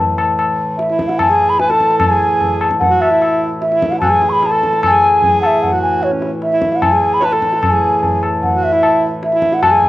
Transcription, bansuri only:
0, 0, Header, 1, 2, 480
1, 0, Start_track
1, 0, Tempo, 404313
1, 2372, Time_signature, 7, 2, 24, 8
1, 5245, Tempo, 400267
1, 11806, End_track
2, 0, Start_track
2, 0, Title_t, "Bansuri"
2, 0, Program_c, 0, 73
2, 922, Note_on_c, 0, 76, 74
2, 1281, Note_on_c, 0, 78, 78
2, 1299, Note_off_c, 0, 76, 0
2, 1408, Note_on_c, 0, 81, 84
2, 1425, Note_off_c, 0, 78, 0
2, 1452, Note_on_c, 0, 80, 91
2, 1464, Note_off_c, 0, 81, 0
2, 1773, Note_on_c, 0, 83, 91
2, 1791, Note_off_c, 0, 80, 0
2, 1889, Note_on_c, 0, 80, 88
2, 1907, Note_off_c, 0, 83, 0
2, 2020, Note_off_c, 0, 80, 0
2, 2020, Note_on_c, 0, 81, 88
2, 2358, Note_off_c, 0, 81, 0
2, 2365, Note_on_c, 0, 80, 91
2, 3041, Note_off_c, 0, 80, 0
2, 3326, Note_on_c, 0, 78, 95
2, 3575, Note_on_c, 0, 76, 90
2, 3593, Note_off_c, 0, 78, 0
2, 4052, Note_off_c, 0, 76, 0
2, 4288, Note_on_c, 0, 76, 89
2, 4636, Note_on_c, 0, 78, 91
2, 4654, Note_off_c, 0, 76, 0
2, 4734, Note_off_c, 0, 78, 0
2, 4741, Note_on_c, 0, 81, 98
2, 4786, Note_on_c, 0, 80, 107
2, 4798, Note_off_c, 0, 81, 0
2, 5097, Note_on_c, 0, 85, 71
2, 5114, Note_off_c, 0, 80, 0
2, 5123, Note_on_c, 0, 83, 97
2, 5141, Note_off_c, 0, 85, 0
2, 5236, Note_off_c, 0, 83, 0
2, 5236, Note_on_c, 0, 83, 84
2, 5294, Note_on_c, 0, 81, 92
2, 5306, Note_off_c, 0, 83, 0
2, 5723, Note_off_c, 0, 81, 0
2, 5723, Note_on_c, 0, 81, 107
2, 5781, Note_on_c, 0, 80, 116
2, 5793, Note_off_c, 0, 81, 0
2, 6433, Note_off_c, 0, 80, 0
2, 6440, Note_on_c, 0, 78, 84
2, 6495, Note_on_c, 0, 76, 92
2, 6507, Note_off_c, 0, 78, 0
2, 6693, Note_on_c, 0, 78, 81
2, 6711, Note_off_c, 0, 76, 0
2, 6921, Note_off_c, 0, 78, 0
2, 6928, Note_on_c, 0, 80, 75
2, 7176, Note_on_c, 0, 73, 70
2, 7194, Note_off_c, 0, 80, 0
2, 7415, Note_off_c, 0, 73, 0
2, 7658, Note_on_c, 0, 76, 76
2, 8011, Note_on_c, 0, 78, 76
2, 8029, Note_off_c, 0, 76, 0
2, 8140, Note_on_c, 0, 80, 90
2, 8158, Note_off_c, 0, 78, 0
2, 8504, Note_on_c, 0, 83, 96
2, 8522, Note_off_c, 0, 80, 0
2, 8634, Note_on_c, 0, 81, 87
2, 8652, Note_off_c, 0, 83, 0
2, 9121, Note_off_c, 0, 81, 0
2, 9121, Note_on_c, 0, 81, 76
2, 9175, Note_on_c, 0, 80, 83
2, 9187, Note_off_c, 0, 81, 0
2, 9826, Note_off_c, 0, 80, 0
2, 10057, Note_on_c, 0, 78, 93
2, 10304, Note_on_c, 0, 76, 101
2, 10322, Note_off_c, 0, 78, 0
2, 10776, Note_off_c, 0, 76, 0
2, 11030, Note_on_c, 0, 76, 79
2, 11385, Note_on_c, 0, 78, 84
2, 11403, Note_off_c, 0, 76, 0
2, 11502, Note_on_c, 0, 81, 91
2, 11520, Note_off_c, 0, 78, 0
2, 11554, Note_on_c, 0, 80, 98
2, 11566, Note_off_c, 0, 81, 0
2, 11806, Note_off_c, 0, 80, 0
2, 11806, End_track
0, 0, End_of_file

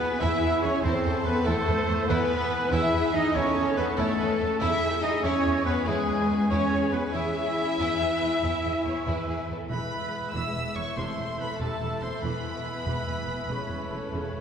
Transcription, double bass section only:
0, 0, Header, 1, 2, 480
1, 0, Start_track
1, 0, Key_signature, 4, "major"
1, 0, Tempo, 418702
1, 2398, Time_signature, 12, 3, 24, 8
1, 6719, Tempo, 427350
1, 11039, Tempo, 419874
1, 16413, End_track
2, 0, Start_track
2, 0, Title_t, "Double bass section"
2, 0, Program_c, 0, 48
2, 247, Note_on_c, 0, 40, 100
2, 339, Note_off_c, 0, 40, 0
2, 482, Note_on_c, 0, 40, 67
2, 573, Note_off_c, 0, 40, 0
2, 722, Note_on_c, 0, 40, 68
2, 814, Note_off_c, 0, 40, 0
2, 962, Note_on_c, 0, 40, 96
2, 1054, Note_off_c, 0, 40, 0
2, 1199, Note_on_c, 0, 40, 76
2, 1291, Note_off_c, 0, 40, 0
2, 1443, Note_on_c, 0, 40, 73
2, 1534, Note_off_c, 0, 40, 0
2, 1688, Note_on_c, 0, 40, 101
2, 1779, Note_off_c, 0, 40, 0
2, 1917, Note_on_c, 0, 40, 77
2, 2008, Note_off_c, 0, 40, 0
2, 2159, Note_on_c, 0, 40, 74
2, 2250, Note_off_c, 0, 40, 0
2, 2401, Note_on_c, 0, 40, 105
2, 2492, Note_off_c, 0, 40, 0
2, 3116, Note_on_c, 0, 40, 98
2, 3208, Note_off_c, 0, 40, 0
2, 3354, Note_on_c, 0, 40, 77
2, 3446, Note_off_c, 0, 40, 0
2, 3597, Note_on_c, 0, 40, 74
2, 3689, Note_off_c, 0, 40, 0
2, 3836, Note_on_c, 0, 40, 99
2, 3928, Note_off_c, 0, 40, 0
2, 4080, Note_on_c, 0, 40, 73
2, 4172, Note_off_c, 0, 40, 0
2, 4321, Note_on_c, 0, 40, 74
2, 4412, Note_off_c, 0, 40, 0
2, 4562, Note_on_c, 0, 40, 105
2, 4654, Note_off_c, 0, 40, 0
2, 4808, Note_on_c, 0, 40, 73
2, 4900, Note_off_c, 0, 40, 0
2, 5048, Note_on_c, 0, 40, 75
2, 5139, Note_off_c, 0, 40, 0
2, 5289, Note_on_c, 0, 40, 98
2, 5381, Note_off_c, 0, 40, 0
2, 6003, Note_on_c, 0, 40, 96
2, 6095, Note_off_c, 0, 40, 0
2, 6245, Note_on_c, 0, 40, 69
2, 6337, Note_off_c, 0, 40, 0
2, 6493, Note_on_c, 0, 40, 68
2, 6585, Note_off_c, 0, 40, 0
2, 6729, Note_on_c, 0, 40, 89
2, 6819, Note_off_c, 0, 40, 0
2, 6970, Note_on_c, 0, 40, 67
2, 7060, Note_off_c, 0, 40, 0
2, 7204, Note_on_c, 0, 40, 68
2, 7294, Note_off_c, 0, 40, 0
2, 7434, Note_on_c, 0, 40, 92
2, 7524, Note_off_c, 0, 40, 0
2, 7672, Note_on_c, 0, 40, 66
2, 7762, Note_off_c, 0, 40, 0
2, 7920, Note_on_c, 0, 40, 65
2, 8009, Note_off_c, 0, 40, 0
2, 8159, Note_on_c, 0, 40, 88
2, 8249, Note_off_c, 0, 40, 0
2, 8882, Note_on_c, 0, 40, 87
2, 8972, Note_off_c, 0, 40, 0
2, 9119, Note_on_c, 0, 40, 62
2, 9208, Note_off_c, 0, 40, 0
2, 9362, Note_on_c, 0, 40, 64
2, 9451, Note_off_c, 0, 40, 0
2, 9599, Note_on_c, 0, 40, 89
2, 9689, Note_off_c, 0, 40, 0
2, 9839, Note_on_c, 0, 40, 59
2, 9929, Note_off_c, 0, 40, 0
2, 10070, Note_on_c, 0, 40, 63
2, 10160, Note_off_c, 0, 40, 0
2, 10314, Note_on_c, 0, 40, 86
2, 10404, Note_off_c, 0, 40, 0
2, 10553, Note_on_c, 0, 40, 62
2, 10643, Note_off_c, 0, 40, 0
2, 10797, Note_on_c, 0, 40, 65
2, 10887, Note_off_c, 0, 40, 0
2, 11034, Note_on_c, 0, 28, 74
2, 11126, Note_off_c, 0, 28, 0
2, 11766, Note_on_c, 0, 28, 69
2, 11857, Note_off_c, 0, 28, 0
2, 12009, Note_on_c, 0, 28, 53
2, 12100, Note_off_c, 0, 28, 0
2, 12248, Note_on_c, 0, 28, 48
2, 12340, Note_off_c, 0, 28, 0
2, 12483, Note_on_c, 0, 28, 69
2, 12575, Note_off_c, 0, 28, 0
2, 12725, Note_on_c, 0, 28, 48
2, 12816, Note_off_c, 0, 28, 0
2, 12960, Note_on_c, 0, 28, 48
2, 13052, Note_off_c, 0, 28, 0
2, 13199, Note_on_c, 0, 28, 68
2, 13291, Note_off_c, 0, 28, 0
2, 13437, Note_on_c, 0, 28, 49
2, 13529, Note_off_c, 0, 28, 0
2, 13681, Note_on_c, 0, 28, 51
2, 13773, Note_off_c, 0, 28, 0
2, 13920, Note_on_c, 0, 28, 72
2, 14012, Note_off_c, 0, 28, 0
2, 14634, Note_on_c, 0, 28, 67
2, 14725, Note_off_c, 0, 28, 0
2, 14881, Note_on_c, 0, 28, 46
2, 14972, Note_off_c, 0, 28, 0
2, 15123, Note_on_c, 0, 28, 49
2, 15215, Note_off_c, 0, 28, 0
2, 15359, Note_on_c, 0, 28, 68
2, 15451, Note_off_c, 0, 28, 0
2, 15600, Note_on_c, 0, 28, 48
2, 15692, Note_off_c, 0, 28, 0
2, 15835, Note_on_c, 0, 28, 47
2, 15927, Note_off_c, 0, 28, 0
2, 16080, Note_on_c, 0, 28, 66
2, 16171, Note_off_c, 0, 28, 0
2, 16321, Note_on_c, 0, 28, 49
2, 16412, Note_off_c, 0, 28, 0
2, 16413, End_track
0, 0, End_of_file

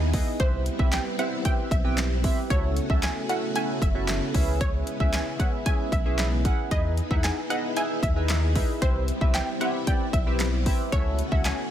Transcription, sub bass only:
0, 0, Header, 1, 2, 480
1, 0, Start_track
1, 0, Tempo, 526316
1, 364, Time_signature, 4, 2, 24, 8
1, 10677, End_track
2, 0, Start_track
2, 0, Title_t, "Sub bass"
2, 0, Program_c, 0, 38
2, 0, Note_on_c, 0, 39, 94
2, 171, Note_off_c, 0, 39, 0
2, 364, Note_on_c, 0, 36, 107
2, 628, Note_off_c, 0, 36, 0
2, 722, Note_on_c, 0, 36, 94
2, 899, Note_off_c, 0, 36, 0
2, 1561, Note_on_c, 0, 35, 96
2, 2091, Note_off_c, 0, 35, 0
2, 2284, Note_on_c, 0, 37, 111
2, 2548, Note_off_c, 0, 37, 0
2, 2643, Note_on_c, 0, 37, 88
2, 2819, Note_off_c, 0, 37, 0
2, 3481, Note_on_c, 0, 30, 91
2, 3835, Note_off_c, 0, 30, 0
2, 3964, Note_on_c, 0, 37, 102
2, 4404, Note_off_c, 0, 37, 0
2, 4562, Note_on_c, 0, 37, 94
2, 4739, Note_off_c, 0, 37, 0
2, 5401, Note_on_c, 0, 35, 94
2, 5931, Note_off_c, 0, 35, 0
2, 6122, Note_on_c, 0, 40, 112
2, 6387, Note_off_c, 0, 40, 0
2, 6482, Note_on_c, 0, 40, 88
2, 6659, Note_off_c, 0, 40, 0
2, 7321, Note_on_c, 0, 39, 93
2, 7850, Note_off_c, 0, 39, 0
2, 8043, Note_on_c, 0, 36, 109
2, 8307, Note_off_c, 0, 36, 0
2, 8401, Note_on_c, 0, 36, 94
2, 8578, Note_off_c, 0, 36, 0
2, 9241, Note_on_c, 0, 35, 94
2, 9771, Note_off_c, 0, 35, 0
2, 9963, Note_on_c, 0, 37, 108
2, 10228, Note_off_c, 0, 37, 0
2, 10323, Note_on_c, 0, 37, 87
2, 10499, Note_off_c, 0, 37, 0
2, 10677, End_track
0, 0, End_of_file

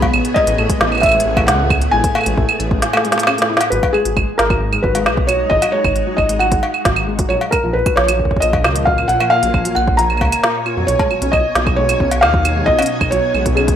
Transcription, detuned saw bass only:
0, 0, Header, 1, 2, 480
1, 0, Start_track
1, 0, Tempo, 447761
1, 146, Time_signature, 4, 2, 24, 8
1, 14750, End_track
2, 0, Start_track
2, 0, Title_t, "Detuned saw bass"
2, 0, Program_c, 0, 39
2, 145, Note_on_c, 0, 33, 101
2, 224, Note_off_c, 0, 33, 0
2, 505, Note_on_c, 0, 33, 93
2, 584, Note_off_c, 0, 33, 0
2, 625, Note_on_c, 0, 33, 99
2, 704, Note_off_c, 0, 33, 0
2, 865, Note_on_c, 0, 33, 88
2, 1279, Note_off_c, 0, 33, 0
2, 1345, Note_on_c, 0, 33, 100
2, 1586, Note_on_c, 0, 37, 98
2, 1602, Note_off_c, 0, 33, 0
2, 1999, Note_off_c, 0, 37, 0
2, 2067, Note_on_c, 0, 33, 101
2, 2145, Note_off_c, 0, 33, 0
2, 2426, Note_on_c, 0, 33, 91
2, 2504, Note_off_c, 0, 33, 0
2, 2546, Note_on_c, 0, 33, 102
2, 2624, Note_off_c, 0, 33, 0
2, 2785, Note_on_c, 0, 33, 88
2, 3026, Note_off_c, 0, 33, 0
2, 3985, Note_on_c, 0, 32, 102
2, 4064, Note_off_c, 0, 32, 0
2, 4345, Note_on_c, 0, 32, 87
2, 4424, Note_off_c, 0, 32, 0
2, 4466, Note_on_c, 0, 32, 99
2, 4544, Note_off_c, 0, 32, 0
2, 4704, Note_on_c, 0, 32, 86
2, 5118, Note_off_c, 0, 32, 0
2, 5186, Note_on_c, 0, 32, 101
2, 5424, Note_on_c, 0, 35, 92
2, 5440, Note_off_c, 0, 32, 0
2, 5839, Note_off_c, 0, 35, 0
2, 5905, Note_on_c, 0, 32, 98
2, 5984, Note_off_c, 0, 32, 0
2, 6266, Note_on_c, 0, 32, 90
2, 6344, Note_off_c, 0, 32, 0
2, 6385, Note_on_c, 0, 32, 97
2, 6464, Note_off_c, 0, 32, 0
2, 6626, Note_on_c, 0, 32, 87
2, 7039, Note_off_c, 0, 32, 0
2, 7346, Note_on_c, 0, 32, 80
2, 7759, Note_off_c, 0, 32, 0
2, 7826, Note_on_c, 0, 34, 99
2, 7904, Note_off_c, 0, 34, 0
2, 8185, Note_on_c, 0, 34, 89
2, 8264, Note_off_c, 0, 34, 0
2, 8305, Note_on_c, 0, 34, 103
2, 8384, Note_off_c, 0, 34, 0
2, 8545, Note_on_c, 0, 34, 86
2, 8959, Note_off_c, 0, 34, 0
2, 9026, Note_on_c, 0, 34, 98
2, 9266, Note_on_c, 0, 37, 93
2, 9282, Note_off_c, 0, 34, 0
2, 9679, Note_off_c, 0, 37, 0
2, 9745, Note_on_c, 0, 34, 103
2, 9824, Note_off_c, 0, 34, 0
2, 10106, Note_on_c, 0, 34, 85
2, 10185, Note_off_c, 0, 34, 0
2, 10226, Note_on_c, 0, 34, 103
2, 10305, Note_off_c, 0, 34, 0
2, 10466, Note_on_c, 0, 34, 85
2, 10946, Note_on_c, 0, 37, 87
2, 10962, Note_off_c, 0, 34, 0
2, 11024, Note_off_c, 0, 37, 0
2, 11546, Note_on_c, 0, 41, 94
2, 11624, Note_off_c, 0, 41, 0
2, 11665, Note_on_c, 0, 35, 99
2, 11744, Note_off_c, 0, 35, 0
2, 12025, Note_on_c, 0, 35, 87
2, 12104, Note_off_c, 0, 35, 0
2, 12146, Note_on_c, 0, 35, 100
2, 12225, Note_off_c, 0, 35, 0
2, 12385, Note_on_c, 0, 35, 83
2, 12799, Note_off_c, 0, 35, 0
2, 12866, Note_on_c, 0, 35, 98
2, 13104, Note_on_c, 0, 39, 92
2, 13121, Note_off_c, 0, 35, 0
2, 13519, Note_off_c, 0, 39, 0
2, 13586, Note_on_c, 0, 35, 102
2, 13664, Note_off_c, 0, 35, 0
2, 13946, Note_on_c, 0, 35, 87
2, 14024, Note_off_c, 0, 35, 0
2, 14065, Note_on_c, 0, 35, 99
2, 14144, Note_off_c, 0, 35, 0
2, 14304, Note_on_c, 0, 35, 86
2, 14719, Note_off_c, 0, 35, 0
2, 14750, End_track
0, 0, End_of_file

